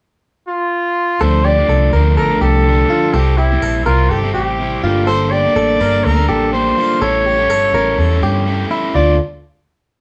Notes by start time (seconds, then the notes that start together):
0.48 F4
1.21 D2 D3 F3 A3 D4 A4 C5
1.45 G4 D5
1.57 F3 A3 D4
1.69 C2 A4
1.93 D2 D3 F3 A3 D4 A#4
2.17 A1 A4 A#4
2.30 F3 A3 D4
2.41 C2 G4 A4
2.66 D3 F3 A3 D4
2.89 D3 F3 A3 D4 F4
3.14 C2 C3 G3 C4 E4 G4 A4
3.38 E4 G4
3.51 G3 C4 E4
3.62 A#1 A4
3.86 C2 C3 G3 C4 E4 F4 A#4
4.10 G1 G4 A4
4.23 G3 C4 E4
4.34 A1 G4
4.59 C3 G3 C4 E4
4.83 G1 G3 A#3 D4 F4 A4
5.07 G2 D3 G3 A#3 D4 A4 C5
5.31 G4 D5
5.44 G3 A#3 D4 A4
5.56 A1 A4
5.80 G1 G3 A#3 D4 A4 A#4
6.05 D2 A4 A#4
6.17 G3 A#3 D4 A4
6.29 A1 G4 A4
6.53 G3 A#3 D4 A4 C5
6.77 G3 A#3 D4 F4 A4
7.01 A1 A2 E3 G3 C#4 E4 A4 C#5
7.26 G4
7.38 G3 C#4 E4 A4
7.50 G1 A4
7.74 A1 G3 C#4 E4 A4 A#4
7.98 E2 A4
8.10 G3 C#4 E4 A4
8.22 G2 G4
8.45 G3 C#4 E4 A4
8.70 G3 C#4 E4 A4
8.95 D2 D3 A3 D4 F4 A4 D5